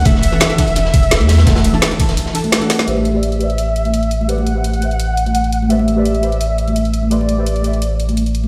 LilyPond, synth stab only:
\new Staff \with { instrumentName = "Synth stab" } { \time 4/4 \key a \dorian \tempo 4 = 170 <e d' a' fis''>8. <e d' a' fis''>8. <e d' a' fis''>2~ <e d' a' fis''>8 | <e d' a' fis''>8. <e d' a' a''>8. <e d' a' a''>4 <e d' a' a''>8. <e d' a' fis''>8. | <a g' b' c'' d''>8. <a g' b' c'' d''>8. <a g' b' c'' d''>2~ <a g' b' c'' d''>8 | <a g' b' c'' d''>8. <a g' b' c'' e''>8. <a g' b' c'' e''>2~ <a g' b' c'' e''>8 |
<a g' b' c'' d''>8. <a g' b' c'' d''>8. <a g' b' c'' d''>2~ <a g' b' c'' d''>8 | <a g' b' c'' d''>8. <a g' b' c'' e''>8. <a g' b' c'' e''>2~ <a g' b' c'' e''>8 | }